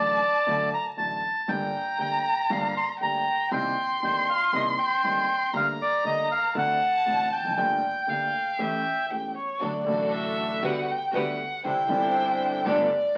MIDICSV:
0, 0, Header, 1, 6, 480
1, 0, Start_track
1, 0, Key_signature, -2, "minor"
1, 0, Tempo, 507185
1, 1409, Time_signature, 4, 2, 24, 8
1, 9088, Key_signature, 1, "major"
1, 12471, End_track
2, 0, Start_track
2, 0, Title_t, "Bandoneon"
2, 0, Program_c, 0, 23
2, 0, Note_on_c, 0, 74, 74
2, 655, Note_off_c, 0, 74, 0
2, 699, Note_on_c, 0, 82, 79
2, 805, Note_off_c, 0, 82, 0
2, 929, Note_on_c, 0, 81, 69
2, 1407, Note_on_c, 0, 79, 67
2, 1424, Note_off_c, 0, 81, 0
2, 1881, Note_off_c, 0, 79, 0
2, 1895, Note_on_c, 0, 79, 82
2, 2381, Note_on_c, 0, 77, 71
2, 2387, Note_off_c, 0, 79, 0
2, 2599, Note_off_c, 0, 77, 0
2, 2619, Note_on_c, 0, 84, 77
2, 2725, Note_off_c, 0, 84, 0
2, 2862, Note_on_c, 0, 82, 79
2, 3302, Note_off_c, 0, 82, 0
2, 3342, Note_on_c, 0, 79, 72
2, 3782, Note_off_c, 0, 79, 0
2, 3829, Note_on_c, 0, 79, 69
2, 4065, Note_off_c, 0, 79, 0
2, 4065, Note_on_c, 0, 77, 70
2, 4280, Note_off_c, 0, 77, 0
2, 4306, Note_on_c, 0, 75, 67
2, 4410, Note_off_c, 0, 75, 0
2, 4533, Note_on_c, 0, 79, 85
2, 5211, Note_off_c, 0, 79, 0
2, 5268, Note_on_c, 0, 77, 75
2, 5371, Note_off_c, 0, 77, 0
2, 5506, Note_on_c, 0, 74, 77
2, 5719, Note_off_c, 0, 74, 0
2, 5737, Note_on_c, 0, 75, 76
2, 5954, Note_off_c, 0, 75, 0
2, 5977, Note_on_c, 0, 77, 64
2, 6194, Note_off_c, 0, 77, 0
2, 6226, Note_on_c, 0, 78, 81
2, 6896, Note_off_c, 0, 78, 0
2, 6933, Note_on_c, 0, 79, 79
2, 8574, Note_off_c, 0, 79, 0
2, 12471, End_track
3, 0, Start_track
3, 0, Title_t, "Violin"
3, 0, Program_c, 1, 40
3, 0, Note_on_c, 1, 81, 75
3, 1125, Note_off_c, 1, 81, 0
3, 1402, Note_on_c, 1, 82, 83
3, 2809, Note_off_c, 1, 82, 0
3, 2839, Note_on_c, 1, 79, 77
3, 3322, Note_on_c, 1, 84, 85
3, 3336, Note_off_c, 1, 79, 0
3, 5239, Note_on_c, 1, 82, 80
3, 5253, Note_off_c, 1, 84, 0
3, 6200, Note_off_c, 1, 82, 0
3, 6204, Note_on_c, 1, 81, 88
3, 7170, Note_on_c, 1, 79, 69
3, 7185, Note_off_c, 1, 81, 0
3, 7656, Note_on_c, 1, 77, 67
3, 7671, Note_off_c, 1, 79, 0
3, 8140, Note_on_c, 1, 76, 68
3, 8154, Note_off_c, 1, 77, 0
3, 8619, Note_on_c, 1, 79, 56
3, 8633, Note_off_c, 1, 76, 0
3, 8854, Note_off_c, 1, 79, 0
3, 8870, Note_on_c, 1, 73, 57
3, 9127, Note_on_c, 1, 74, 65
3, 9141, Note_off_c, 1, 73, 0
3, 9577, Note_on_c, 1, 76, 78
3, 9591, Note_off_c, 1, 74, 0
3, 10075, Note_on_c, 1, 78, 76
3, 10089, Note_off_c, 1, 76, 0
3, 10323, Note_on_c, 1, 79, 74
3, 10337, Note_off_c, 1, 78, 0
3, 10550, Note_on_c, 1, 78, 77
3, 10565, Note_off_c, 1, 79, 0
3, 11021, Note_off_c, 1, 78, 0
3, 11032, Note_on_c, 1, 79, 88
3, 11991, Note_on_c, 1, 74, 87
3, 12005, Note_off_c, 1, 79, 0
3, 12471, Note_off_c, 1, 74, 0
3, 12471, End_track
4, 0, Start_track
4, 0, Title_t, "String section"
4, 0, Program_c, 2, 48
4, 9083, Note_on_c, 2, 62, 45
4, 9087, Note_on_c, 2, 66, 38
4, 9090, Note_on_c, 2, 69, 47
4, 9287, Note_off_c, 2, 62, 0
4, 9289, Note_off_c, 2, 66, 0
4, 9291, Note_off_c, 2, 69, 0
4, 9336, Note_on_c, 2, 66, 62
4, 9339, Note_on_c, 2, 62, 69
4, 9339, Note_on_c, 2, 69, 78
4, 10018, Note_off_c, 2, 66, 0
4, 10019, Note_off_c, 2, 62, 0
4, 10020, Note_off_c, 2, 69, 0
4, 10054, Note_on_c, 2, 67, 59
4, 10055, Note_on_c, 2, 71, 72
4, 10056, Note_on_c, 2, 66, 68
4, 10254, Note_off_c, 2, 67, 0
4, 10255, Note_off_c, 2, 66, 0
4, 10255, Note_off_c, 2, 71, 0
4, 10529, Note_on_c, 2, 66, 61
4, 10536, Note_on_c, 2, 67, 57
4, 10538, Note_on_c, 2, 71, 67
4, 10732, Note_off_c, 2, 66, 0
4, 10736, Note_off_c, 2, 67, 0
4, 10737, Note_off_c, 2, 71, 0
4, 11018, Note_on_c, 2, 72, 54
4, 11020, Note_on_c, 2, 62, 44
4, 11020, Note_on_c, 2, 64, 46
4, 11216, Note_off_c, 2, 72, 0
4, 11217, Note_off_c, 2, 62, 0
4, 11217, Note_off_c, 2, 64, 0
4, 11249, Note_on_c, 2, 62, 70
4, 11252, Note_on_c, 2, 64, 68
4, 11258, Note_on_c, 2, 72, 82
4, 11932, Note_off_c, 2, 62, 0
4, 11934, Note_off_c, 2, 64, 0
4, 11937, Note_off_c, 2, 72, 0
4, 11973, Note_on_c, 2, 67, 69
4, 11975, Note_on_c, 2, 62, 76
4, 11975, Note_on_c, 2, 69, 72
4, 12172, Note_off_c, 2, 67, 0
4, 12173, Note_off_c, 2, 62, 0
4, 12173, Note_off_c, 2, 69, 0
4, 12471, End_track
5, 0, Start_track
5, 0, Title_t, "Grand piano"
5, 0, Program_c, 3, 0
5, 0, Note_on_c, 3, 33, 40
5, 0, Note_on_c, 3, 45, 41
5, 0, Note_on_c, 3, 50, 38
5, 0, Note_on_c, 3, 54, 34
5, 0, Note_on_c, 3, 57, 35
5, 0, Note_on_c, 3, 66, 39
5, 166, Note_off_c, 3, 50, 0
5, 167, Note_off_c, 3, 54, 0
5, 169, Note_off_c, 3, 57, 0
5, 170, Note_off_c, 3, 33, 0
5, 170, Note_off_c, 3, 45, 0
5, 171, Note_off_c, 3, 66, 0
5, 440, Note_on_c, 3, 50, 68
5, 440, Note_on_c, 3, 54, 51
5, 444, Note_on_c, 3, 38, 70
5, 444, Note_on_c, 3, 57, 49
5, 446, Note_on_c, 3, 66, 62
5, 645, Note_off_c, 3, 50, 0
5, 646, Note_off_c, 3, 54, 0
5, 647, Note_off_c, 3, 57, 0
5, 648, Note_off_c, 3, 38, 0
5, 648, Note_off_c, 3, 66, 0
5, 915, Note_on_c, 3, 50, 36
5, 918, Note_on_c, 3, 54, 33
5, 920, Note_on_c, 3, 45, 41
5, 921, Note_on_c, 3, 33, 41
5, 921, Note_on_c, 3, 57, 32
5, 922, Note_on_c, 3, 66, 37
5, 1123, Note_off_c, 3, 50, 0
5, 1125, Note_off_c, 3, 54, 0
5, 1126, Note_off_c, 3, 45, 0
5, 1127, Note_off_c, 3, 33, 0
5, 1127, Note_off_c, 3, 57, 0
5, 1127, Note_off_c, 3, 66, 0
5, 1400, Note_on_c, 3, 50, 54
5, 1401, Note_on_c, 3, 55, 47
5, 1402, Note_on_c, 3, 31, 65
5, 1405, Note_on_c, 3, 58, 48
5, 1406, Note_on_c, 3, 43, 68
5, 1407, Note_on_c, 3, 67, 61
5, 1607, Note_off_c, 3, 50, 0
5, 1607, Note_off_c, 3, 55, 0
5, 1608, Note_off_c, 3, 31, 0
5, 1609, Note_off_c, 3, 58, 0
5, 1610, Note_off_c, 3, 43, 0
5, 1610, Note_off_c, 3, 67, 0
5, 1877, Note_on_c, 3, 50, 42
5, 1881, Note_on_c, 3, 38, 40
5, 1881, Note_on_c, 3, 55, 31
5, 1882, Note_on_c, 3, 67, 36
5, 1887, Note_on_c, 3, 58, 35
5, 2087, Note_off_c, 3, 50, 0
5, 2088, Note_off_c, 3, 38, 0
5, 2088, Note_off_c, 3, 55, 0
5, 2088, Note_off_c, 3, 67, 0
5, 2091, Note_off_c, 3, 58, 0
5, 2365, Note_on_c, 3, 58, 51
5, 2366, Note_on_c, 3, 55, 51
5, 2368, Note_on_c, 3, 31, 73
5, 2368, Note_on_c, 3, 43, 73
5, 2368, Note_on_c, 3, 50, 59
5, 2369, Note_on_c, 3, 67, 59
5, 2569, Note_off_c, 3, 58, 0
5, 2570, Note_off_c, 3, 55, 0
5, 2571, Note_off_c, 3, 31, 0
5, 2571, Note_off_c, 3, 43, 0
5, 2571, Note_off_c, 3, 50, 0
5, 2571, Note_off_c, 3, 67, 0
5, 2846, Note_on_c, 3, 50, 43
5, 2850, Note_on_c, 3, 55, 35
5, 2851, Note_on_c, 3, 58, 34
5, 2852, Note_on_c, 3, 38, 41
5, 2858, Note_on_c, 3, 67, 39
5, 3050, Note_off_c, 3, 50, 0
5, 3051, Note_off_c, 3, 55, 0
5, 3052, Note_off_c, 3, 38, 0
5, 3052, Note_off_c, 3, 58, 0
5, 3055, Note_off_c, 3, 67, 0
5, 3322, Note_on_c, 3, 51, 59
5, 3325, Note_on_c, 3, 48, 64
5, 3325, Note_on_c, 3, 67, 57
5, 3326, Note_on_c, 3, 36, 68
5, 3329, Note_on_c, 3, 58, 50
5, 3331, Note_on_c, 3, 60, 49
5, 3527, Note_off_c, 3, 51, 0
5, 3528, Note_off_c, 3, 48, 0
5, 3528, Note_off_c, 3, 67, 0
5, 3529, Note_off_c, 3, 36, 0
5, 3531, Note_off_c, 3, 58, 0
5, 3531, Note_off_c, 3, 60, 0
5, 3812, Note_on_c, 3, 58, 35
5, 3812, Note_on_c, 3, 60, 32
5, 3813, Note_on_c, 3, 31, 42
5, 3814, Note_on_c, 3, 51, 38
5, 3814, Note_on_c, 3, 67, 40
5, 3816, Note_on_c, 3, 43, 48
5, 4012, Note_off_c, 3, 31, 0
5, 4012, Note_off_c, 3, 51, 0
5, 4012, Note_off_c, 3, 58, 0
5, 4012, Note_off_c, 3, 60, 0
5, 4012, Note_off_c, 3, 67, 0
5, 4013, Note_off_c, 3, 43, 0
5, 4285, Note_on_c, 3, 48, 68
5, 4287, Note_on_c, 3, 36, 69
5, 4287, Note_on_c, 3, 67, 70
5, 4288, Note_on_c, 3, 51, 57
5, 4291, Note_on_c, 3, 58, 60
5, 4291, Note_on_c, 3, 60, 51
5, 4488, Note_off_c, 3, 48, 0
5, 4489, Note_off_c, 3, 36, 0
5, 4489, Note_off_c, 3, 51, 0
5, 4489, Note_off_c, 3, 67, 0
5, 4491, Note_off_c, 3, 58, 0
5, 4491, Note_off_c, 3, 60, 0
5, 4774, Note_on_c, 3, 31, 44
5, 4774, Note_on_c, 3, 43, 39
5, 4774, Note_on_c, 3, 51, 41
5, 4776, Note_on_c, 3, 60, 32
5, 4777, Note_on_c, 3, 58, 33
5, 4779, Note_on_c, 3, 67, 40
5, 4972, Note_off_c, 3, 31, 0
5, 4972, Note_off_c, 3, 43, 0
5, 4972, Note_off_c, 3, 51, 0
5, 4973, Note_off_c, 3, 58, 0
5, 4973, Note_off_c, 3, 60, 0
5, 4975, Note_off_c, 3, 67, 0
5, 5239, Note_on_c, 3, 50, 69
5, 5240, Note_on_c, 3, 58, 60
5, 5243, Note_on_c, 3, 55, 57
5, 5244, Note_on_c, 3, 38, 65
5, 5244, Note_on_c, 3, 67, 60
5, 5444, Note_off_c, 3, 50, 0
5, 5444, Note_off_c, 3, 58, 0
5, 5446, Note_off_c, 3, 38, 0
5, 5446, Note_off_c, 3, 55, 0
5, 5446, Note_off_c, 3, 67, 0
5, 5721, Note_on_c, 3, 38, 48
5, 5722, Note_on_c, 3, 58, 35
5, 5723, Note_on_c, 3, 55, 36
5, 5724, Note_on_c, 3, 50, 47
5, 5731, Note_on_c, 3, 67, 42
5, 5924, Note_off_c, 3, 38, 0
5, 5924, Note_off_c, 3, 58, 0
5, 5925, Note_off_c, 3, 55, 0
5, 5926, Note_off_c, 3, 50, 0
5, 5929, Note_off_c, 3, 67, 0
5, 6196, Note_on_c, 3, 38, 76
5, 6196, Note_on_c, 3, 50, 66
5, 6197, Note_on_c, 3, 60, 50
5, 6201, Note_on_c, 3, 57, 55
5, 6203, Note_on_c, 3, 66, 64
5, 6401, Note_off_c, 3, 38, 0
5, 6401, Note_off_c, 3, 50, 0
5, 6402, Note_off_c, 3, 60, 0
5, 6404, Note_off_c, 3, 57, 0
5, 6405, Note_off_c, 3, 66, 0
5, 6676, Note_on_c, 3, 45, 42
5, 6679, Note_on_c, 3, 50, 34
5, 6679, Note_on_c, 3, 57, 31
5, 6680, Note_on_c, 3, 33, 41
5, 6680, Note_on_c, 3, 60, 33
5, 6683, Note_on_c, 3, 66, 41
5, 6881, Note_off_c, 3, 45, 0
5, 6882, Note_off_c, 3, 57, 0
5, 6883, Note_off_c, 3, 33, 0
5, 6883, Note_off_c, 3, 50, 0
5, 6883, Note_off_c, 3, 60, 0
5, 6885, Note_off_c, 3, 66, 0
5, 6988, Note_on_c, 3, 40, 38
5, 7045, Note_off_c, 3, 40, 0
5, 7048, Note_on_c, 3, 41, 48
5, 7106, Note_off_c, 3, 41, 0
5, 7106, Note_on_c, 3, 42, 57
5, 7165, Note_off_c, 3, 42, 0
5, 7168, Note_on_c, 3, 57, 51
5, 7169, Note_on_c, 3, 50, 56
5, 7170, Note_on_c, 3, 43, 75
5, 7171, Note_on_c, 3, 58, 53
5, 7172, Note_on_c, 3, 31, 69
5, 7177, Note_on_c, 3, 67, 60
5, 7367, Note_off_c, 3, 57, 0
5, 7368, Note_off_c, 3, 43, 0
5, 7368, Note_off_c, 3, 50, 0
5, 7369, Note_off_c, 3, 31, 0
5, 7369, Note_off_c, 3, 58, 0
5, 7372, Note_off_c, 3, 67, 0
5, 7637, Note_on_c, 3, 50, 40
5, 7642, Note_on_c, 3, 38, 44
5, 7642, Note_on_c, 3, 58, 30
5, 7645, Note_on_c, 3, 57, 35
5, 7648, Note_on_c, 3, 67, 38
5, 7844, Note_off_c, 3, 38, 0
5, 7845, Note_off_c, 3, 58, 0
5, 7846, Note_off_c, 3, 57, 0
5, 7847, Note_off_c, 3, 50, 0
5, 7848, Note_off_c, 3, 67, 0
5, 8125, Note_on_c, 3, 52, 57
5, 8127, Note_on_c, 3, 45, 64
5, 8129, Note_on_c, 3, 57, 54
5, 8129, Note_on_c, 3, 67, 61
5, 8131, Note_on_c, 3, 33, 69
5, 8131, Note_on_c, 3, 61, 53
5, 8327, Note_off_c, 3, 52, 0
5, 8328, Note_off_c, 3, 45, 0
5, 8329, Note_off_c, 3, 57, 0
5, 8329, Note_off_c, 3, 67, 0
5, 8330, Note_off_c, 3, 33, 0
5, 8330, Note_off_c, 3, 61, 0
5, 8615, Note_on_c, 3, 40, 43
5, 8615, Note_on_c, 3, 52, 32
5, 8616, Note_on_c, 3, 57, 31
5, 8618, Note_on_c, 3, 28, 37
5, 8621, Note_on_c, 3, 67, 41
5, 8622, Note_on_c, 3, 61, 33
5, 8813, Note_off_c, 3, 40, 0
5, 8813, Note_off_c, 3, 52, 0
5, 8814, Note_off_c, 3, 57, 0
5, 8815, Note_off_c, 3, 28, 0
5, 8816, Note_off_c, 3, 67, 0
5, 8817, Note_off_c, 3, 61, 0
5, 9100, Note_on_c, 3, 50, 51
5, 9100, Note_on_c, 3, 54, 34
5, 9100, Note_on_c, 3, 57, 36
5, 9102, Note_on_c, 3, 66, 44
5, 9104, Note_on_c, 3, 38, 47
5, 9296, Note_off_c, 3, 50, 0
5, 9296, Note_off_c, 3, 54, 0
5, 9296, Note_off_c, 3, 57, 0
5, 9297, Note_off_c, 3, 66, 0
5, 9298, Note_off_c, 3, 38, 0
5, 9314, Note_on_c, 3, 50, 65
5, 9329, Note_on_c, 3, 54, 52
5, 9337, Note_on_c, 3, 45, 68
5, 9339, Note_on_c, 3, 33, 64
5, 9343, Note_on_c, 3, 57, 58
5, 9352, Note_on_c, 3, 66, 59
5, 10007, Note_off_c, 3, 50, 0
5, 10015, Note_off_c, 3, 54, 0
5, 10018, Note_off_c, 3, 45, 0
5, 10019, Note_off_c, 3, 33, 0
5, 10022, Note_off_c, 3, 57, 0
5, 10026, Note_off_c, 3, 66, 0
5, 10055, Note_on_c, 3, 38, 73
5, 10059, Note_on_c, 3, 50, 69
5, 10060, Note_on_c, 3, 59, 59
5, 10062, Note_on_c, 3, 66, 70
5, 10063, Note_on_c, 3, 55, 53
5, 10255, Note_off_c, 3, 38, 0
5, 10257, Note_off_c, 3, 50, 0
5, 10257, Note_off_c, 3, 59, 0
5, 10258, Note_off_c, 3, 66, 0
5, 10259, Note_off_c, 3, 55, 0
5, 10537, Note_on_c, 3, 50, 71
5, 10537, Note_on_c, 3, 55, 50
5, 10541, Note_on_c, 3, 59, 54
5, 10545, Note_on_c, 3, 66, 63
5, 10546, Note_on_c, 3, 38, 67
5, 10736, Note_off_c, 3, 55, 0
5, 10738, Note_off_c, 3, 59, 0
5, 10740, Note_off_c, 3, 50, 0
5, 10740, Note_off_c, 3, 66, 0
5, 10741, Note_off_c, 3, 38, 0
5, 11024, Note_on_c, 3, 48, 52
5, 11025, Note_on_c, 3, 55, 40
5, 11026, Note_on_c, 3, 50, 43
5, 11027, Note_on_c, 3, 36, 48
5, 11027, Note_on_c, 3, 64, 50
5, 11032, Note_on_c, 3, 60, 41
5, 11219, Note_off_c, 3, 48, 0
5, 11220, Note_off_c, 3, 50, 0
5, 11220, Note_off_c, 3, 55, 0
5, 11221, Note_off_c, 3, 36, 0
5, 11221, Note_off_c, 3, 64, 0
5, 11223, Note_off_c, 3, 60, 0
5, 11239, Note_on_c, 3, 50, 58
5, 11250, Note_on_c, 3, 55, 55
5, 11258, Note_on_c, 3, 31, 76
5, 11259, Note_on_c, 3, 43, 64
5, 11265, Note_on_c, 3, 60, 55
5, 11277, Note_on_c, 3, 64, 70
5, 11927, Note_off_c, 3, 50, 0
5, 11933, Note_off_c, 3, 55, 0
5, 11937, Note_off_c, 3, 31, 0
5, 11937, Note_off_c, 3, 43, 0
5, 11940, Note_off_c, 3, 60, 0
5, 11946, Note_off_c, 3, 64, 0
5, 11978, Note_on_c, 3, 50, 62
5, 11982, Note_on_c, 3, 43, 78
5, 11983, Note_on_c, 3, 55, 66
5, 11983, Note_on_c, 3, 57, 62
5, 11983, Note_on_c, 3, 67, 74
5, 11984, Note_on_c, 3, 31, 75
5, 12175, Note_off_c, 3, 50, 0
5, 12177, Note_off_c, 3, 43, 0
5, 12177, Note_off_c, 3, 55, 0
5, 12177, Note_off_c, 3, 57, 0
5, 12177, Note_off_c, 3, 67, 0
5, 12178, Note_off_c, 3, 31, 0
5, 12471, End_track
6, 0, Start_track
6, 0, Title_t, "Upright bass"
6, 0, Program_c, 4, 32
6, 0, Note_on_c, 4, 33, 46
6, 171, Note_off_c, 4, 33, 0
6, 453, Note_on_c, 4, 38, 71
6, 652, Note_off_c, 4, 38, 0
6, 922, Note_on_c, 4, 33, 45
6, 1127, Note_off_c, 4, 33, 0
6, 1408, Note_on_c, 4, 31, 82
6, 1611, Note_off_c, 4, 31, 0
6, 1893, Note_on_c, 4, 38, 49
6, 2093, Note_off_c, 4, 38, 0
6, 2366, Note_on_c, 4, 31, 82
6, 2570, Note_off_c, 4, 31, 0
6, 2860, Note_on_c, 4, 38, 46
6, 3056, Note_off_c, 4, 38, 0
6, 3331, Note_on_c, 4, 36, 81
6, 3531, Note_off_c, 4, 36, 0
6, 3812, Note_on_c, 4, 31, 51
6, 4012, Note_off_c, 4, 31, 0
6, 4282, Note_on_c, 4, 36, 80
6, 4486, Note_off_c, 4, 36, 0
6, 4762, Note_on_c, 4, 31, 51
6, 4966, Note_off_c, 4, 31, 0
6, 5236, Note_on_c, 4, 38, 79
6, 5442, Note_off_c, 4, 38, 0
6, 5719, Note_on_c, 4, 38, 53
6, 5923, Note_off_c, 4, 38, 0
6, 6199, Note_on_c, 4, 38, 93
6, 6403, Note_off_c, 4, 38, 0
6, 6680, Note_on_c, 4, 33, 52
6, 6883, Note_off_c, 4, 33, 0
6, 6979, Note_on_c, 4, 28, 39
6, 7041, Note_off_c, 4, 28, 0
6, 7047, Note_on_c, 4, 29, 57
6, 7097, Note_off_c, 4, 29, 0
6, 7102, Note_on_c, 4, 30, 69
6, 7163, Note_off_c, 4, 30, 0
6, 7173, Note_on_c, 4, 31, 87
6, 7370, Note_off_c, 4, 31, 0
6, 7672, Note_on_c, 4, 38, 49
6, 7860, Note_off_c, 4, 38, 0
6, 9106, Note_on_c, 4, 38, 53
6, 9298, Note_off_c, 4, 38, 0
6, 9337, Note_on_c, 4, 33, 63
6, 10018, Note_off_c, 4, 33, 0
6, 10053, Note_on_c, 4, 38, 87
6, 10254, Note_off_c, 4, 38, 0
6, 10534, Note_on_c, 4, 38, 81
6, 10735, Note_off_c, 4, 38, 0
6, 11023, Note_on_c, 4, 36, 59
6, 11219, Note_off_c, 4, 36, 0
6, 11249, Note_on_c, 4, 31, 70
6, 11932, Note_off_c, 4, 31, 0
6, 11975, Note_on_c, 4, 31, 94
6, 12173, Note_off_c, 4, 31, 0
6, 12471, End_track
0, 0, End_of_file